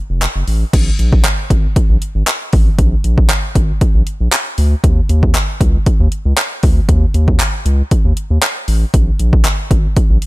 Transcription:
0.10 analog synth bass F1
0.22 clap, closed hi-hat
0.36 analog synth bass F#1
0.48 analog synth bass A1, open hi-hat
0.73 analog synth bass A#1, kick, closed hi-hat, crash
0.99 analog synth bass A#1, closed hi-hat
1.13 kick
1.25 clap, closed hi-hat
1.50 analog synth bass G#1, kick, closed hi-hat
1.76 kick, closed hi-hat
1.90 analog synth bass A#1
2.02 closed hi-hat
2.15 analog synth bass G#1
2.27 clap, closed hi-hat
2.53 analog synth bass A1, kick, open hi-hat
2.79 analog synth bass A#1, kick, closed hi-hat
3.04 analog synth bass A#1, closed hi-hat
3.18 kick
3.30 clap, closed hi-hat
3.55 analog synth bass G#1, kick, closed hi-hat
3.81 kick, closed hi-hat
3.95 analog synth bass A#1
4.07 closed hi-hat
4.21 analog synth bass A#1
4.32 clap, closed hi-hat
4.58 analog synth bass D2, open hi-hat
4.84 analog synth bass D#2, kick, closed hi-hat
5.09 analog synth bass D#2, closed hi-hat
5.23 kick
5.35 clap, closed hi-hat
5.61 analog synth bass C#2, kick, closed hi-hat
5.86 kick, closed hi-hat
6.00 analog synth bass D#2
6.12 closed hi-hat
6.25 analog synth bass C#2
6.37 clap, closed hi-hat
6.63 analog synth bass D2, kick, open hi-hat
6.89 analog synth bass D#2, kick, closed hi-hat
7.14 analog synth bass D#2, closed hi-hat
7.28 kick
7.40 clap, closed hi-hat
7.66 analog synth bass C#2, closed hi-hat
7.91 kick, closed hi-hat
8.05 analog synth bass D#2
8.17 closed hi-hat
8.30 analog synth bass D#2
8.42 clap, closed hi-hat
8.68 analog synth bass A1, open hi-hat
8.94 analog synth bass A#1, kick, closed hi-hat
9.19 analog synth bass A#1, closed hi-hat
9.33 kick
9.45 clap, closed hi-hat
9.71 analog synth bass G#1, kick, closed hi-hat
9.96 kick, closed hi-hat
10.10 analog synth bass A#1
10.22 closed hi-hat

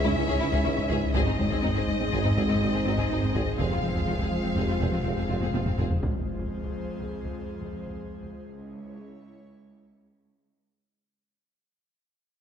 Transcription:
Already playing: sub bass C#2, trombone section G#2 G#3, analog synth pad G#3 E4 G#4 C#5, french horn section C#4 E4, violin section E5
0.04 cello section C#2, analog synth bass C#3, viola section C#4, violin section E4, taiko low
0.16 analog synth bass C#2, double bass section C#2, cello section C#2, tuba C#2, violin section C#4, viola section C#4
0.28 cello section C#2, analog synth bass C#2, viola section C#4, violin section G#4
0.40 cello section C#2, analog synth bass C#2, tuba C#2, double bass section C#2, viola section C#4, violin section E4
0.52 cello section C#2, analog synth bass C#2, viola section C#4, violin section G#4, taiko
0.64 analog synth bass C#2, cello section C#2, tuba C#2, double bass section C#2, viola section C#4, violin section E4
0.76 cello section C#2, analog synth bass C#2, viola section C#4, violin section C#4, taiko low
0.89 cello section C#2, tuba C#2, analog synth bass C#2, double bass section C#2, viola section C#4, violin section G#4, taiko
1.03 analog synth bass C#2
1.13 tuba G#1, sub bass G#1, double bass section G#1, cello section G#2, analog synth bass G#2, trombone section G#3, viola section C4, french horn section D#4, analog synth pad D#4 G#4 C5, violin section G#4 D#5, taiko
1.26 analog synth bass G#2, cello section G#2, viola section C4, violin section D#4
1.37 double bass section G#1, tuba G#1, cello section G#2, analog synth bass G#3, viola section C4, violin section C4, taiko low
1.50 cello section G#2, analog synth bass G#2, viola section C4, violin section G#4, taiko
1.62 tuba G#1, double bass section G#1, cello section G#2, analog synth bass G#3, viola section C4, violin section D#4, taiko low
1.74 cello section G#2, analog synth bass G#2, viola section C4, violin section G#4, taiko
1.88 analog synth bass G#3
2.00 cello section G#2, analog synth bass G#3, violin section C4, viola section C4
2.11 double bass section G#1, tuba G#1, cello section G#2, analog synth bass G#2, viola section C4, french horn section C4, violin section G#4, taiko
2.23 cello section G#2, analog synth bass G#2, viola section C4, violin section D#4, taiko low
2.36 tuba G#1, double bass section G#1, cello section G#2, analog synth bass G#2, viola section C4, violin section G#4, taiko
2.48 cello section G#2, analog synth bass G#3, viola section C4, violin section D#4, taiko low
2.61 double bass section G#1, tuba G#1, cello section G#2, analog synth bass G#2, viola section C4, violin section C4
2.72 cello section G#2, analog synth bass G#2, viola section C4, violin section G#4
2.85 double bass section G#1, tuba G#1, cello section G#2, analog synth bass G#2, viola section C4, violin section D#4
2.96 analog synth bass G#2, cello section G#2, viola section C4, violin section G#4, taiko
3.08 double bass section G#1, tuba G#1, cello section G#2, analog synth bass G#2, viola section C4, violin section D#4
3.20 cello section G#2, analog synth bass G#2, viola section C4, violin section C4, taiko low
3.32 double bass section G#1, tuba G#1, cello section G#2, analog synth bass G#2, viola section C4, violin section G#4, taiko
3.47 analog synth bass G#2
3.57 sub bass F1, double bass section F1, tuba F1, trombone section F2, cello section F2, analog synth bass F2, analog synth pad G#3 F4, viola section C4, french horn section F4, violin section G#4 F5, taiko
3.70 analog synth bass F2, cello section F2, viola section C4, violin section F4
3.81 double bass section F1, tuba F1, cello section F2, analog synth bass F3, viola section C4, violin section C4
3.93 analog synth bass F2, cello section F2, viola section C4, violin section G#4, taiko
4.06 double bass section F1, tuba F1, cello section F2, analog synth bass F3, viola section C4, violin section F4
4.18 analog synth bass F2, cello section F2, viola section C4, violin section G#4, taiko
4.31 analog synth bass F3
4.43 cello section F2, analog synth bass F3, viola section C4, violin section C4
4.55 double bass section F1, tuba F1, analog synth bass F2, cello section F2, viola section C4, violin section G#4, taiko
4.68 analog synth bass F2, cello section F2, viola section C4, violin section F4
4.79 double bass section F1, tuba F1, cello section F2, analog synth bass F2, viola section C4, violin section G#4, taiko
4.92 cello section F2, analog synth bass F3, viola section C4, violin section F4
5.03 double bass section F1, tuba F1, analog synth bass F2, cello section F2, viola section C4
5.08 violin section C4
5.16 analog synth bass F2, cello section F2, viola section C4, violin section G#4
5.28 double bass section F1, tuba F1, analog synth bass F2, cello section F2, viola section C4, violin section F4
5.40 analog synth bass F2, cello section F2, viola section C4, violin section G#4, taiko high
5.53 double bass section F1, tuba F1, analog synth bass F2, cello section F2, viola section C4, violin section F4, taiko high
5.66 analog synth bass F2, cello section F2, viola section C4, violin section C4, taiko low-mid
5.78 double bass section F1, tuba F1, analog synth bass F2, cello section F2, viola section C4, violin section G#4, taiko low-mid
5.91 analog synth bass F2, taiko low
6.02 cello section F2, analog synth pad G#3 F4 G#4 C5, taiko, impact
6.39 taiko
6.64 taiko
7.01 taiko
7.25 taiko
7.61 taiko
7.86 taiko
8.23 taiko
8.46 cello section C#2, analog synth pad E4 C#5

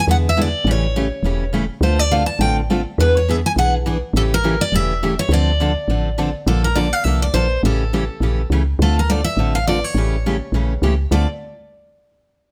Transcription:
0.07 fm bass E2, steel-string acoustic guitar D3 G#3 B3 E4 G#4 F#5
0.29 steel-string acoustic guitar E5
0.37 steel-string acoustic guitar D3 G#3 B3 E4 G#4
0.41 steel-string acoustic guitar D5
0.65 fm bass A1, steel-string acoustic guitar C#3 E3 A3 C#4 G4
0.71 steel-string acoustic guitar C#5
0.96 steel-string acoustic guitar C#3 E3 A3 C#4 G4
1.23 fm bass E1, steel-string acoustic guitar C#3 E3 A3 C#4 G4
1.53 steel-string acoustic guitar C#3 E3 A3 C#4 G4
1.81 fm bass D2, steel-string acoustic guitar D3 A3 C4 F4 A4 C5
1.99 steel-string acoustic guitar D5
2.11 steel-string acoustic guitar D3 A3 C4 F4 A4 F5
2.26 steel-string acoustic guitar A5
2.39 fm bass A1, steel-string acoustic guitar D3 A3 C4 F4 A4 G5
2.70 steel-string acoustic guitar D3 A3 C4 F4 A4
2.98 fm bass E2, steel-string acoustic guitar E3 B3 D4 G#4 B4
3.17 steel-string acoustic guitar C#5
3.28 steel-string acoustic guitar E3 B3 D4 G#4 E5
3.46 steel-string acoustic guitar G#5
3.56 fm bass B1, steel-string acoustic guitar E3 B3 D4 G#4 F#5
3.86 steel-string acoustic guitar E3 B3 D4 G#4
4.13 fm bass A1, steel-string acoustic guitar C#3 E3 A3 C#4 G4 A4
4.34 steel-string acoustic guitar A#4
4.44 steel-string acoustic guitar C#3 E3 A3 C#4 G4
4.61 steel-string acoustic guitar D5
4.72 fm bass E1, steel-string acoustic guitar C#3 E3 A3 C#4 G4 E5
5.03 steel-string acoustic guitar C#3 E3 A3 C#4 G4
5.19 steel-string acoustic guitar C#5
5.29 fm bass D2, steel-string acoustic guitar D3 F3 C4 D4 A4
5.33 steel-string acoustic guitar D5
5.60 steel-string acoustic guitar D3 F3 C4 D4 A4
5.88 fm bass A1, steel-string acoustic guitar D3 F3 C4 D4 A4
6.18 steel-string acoustic guitar D3 F3 C4 D4 A4
6.47 fm bass A#1, steel-string acoustic guitar D3 F3 A#3 D4 A4
6.64 steel-string acoustic guitar A#4
6.75 steel-string acoustic guitar D3 F3 A#3 D4 A4 D5
6.93 steel-string acoustic guitar F5
7.04 fm bass C2, steel-string acoustic guitar D3 F3 A#3 D4 A4 E5
7.22 steel-string acoustic guitar D5
7.34 fm bass A#1, steel-string acoustic guitar D3 F3 A#3 D4 A4 C5
7.63 fm bass A1, steel-string acoustic guitar C#3 E3 A3 C#4 G4 A4
7.93 steel-string acoustic guitar C#3 E3 A3 C#4 G4
8.20 fm bass A#1, steel-string acoustic guitar C#3 E3 A3 C#4 G4
8.50 fm bass C#2, steel-string acoustic guitar C#3 E3 A3 C#4 G4
8.79 fm bass D2, steel-string acoustic guitar D3 A3 C4 F4 A4
8.99 steel-string acoustic guitar A#4
9.10 steel-string acoustic guitar D3 A3 C4 F4 A4 D5
9.24 steel-string acoustic guitar E5
9.37 fm bass A1, steel-string acoustic guitar D3 A3 C4 F4 A4
9.55 steel-string acoustic guitar F5
9.67 steel-string acoustic guitar D3 A3 C4 F4 A4 D5
9.84 steel-string acoustic guitar C#5
9.95 fm bass A1, steel-string acoustic guitar C#3 E3 A3 C#4 G4
10.26 steel-string acoustic guitar C#3 E3 A3 C#4 G4
10.52 fm bass A#1, steel-string acoustic guitar C#3 E3 A3 C#4 G4
10.82 fm bass C#2, steel-string acoustic guitar C#3 E3 A3 C#4 G4
11.11 fm bass D2, steel-string acoustic guitar D3 A3 C4 F4 A4 D5

